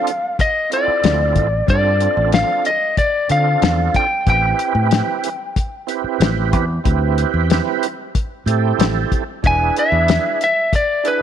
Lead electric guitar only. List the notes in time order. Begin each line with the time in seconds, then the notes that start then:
Already playing: F5
0.41 D#5
0.74 D5
1.70 D5
2.34 F5
2.67 D#5
2.98 D5
3.32 F5
3.96 G5
4.30 G5
9.47 G#5
9.79 E5
10.44 E5
10.76 D5
11.08 B4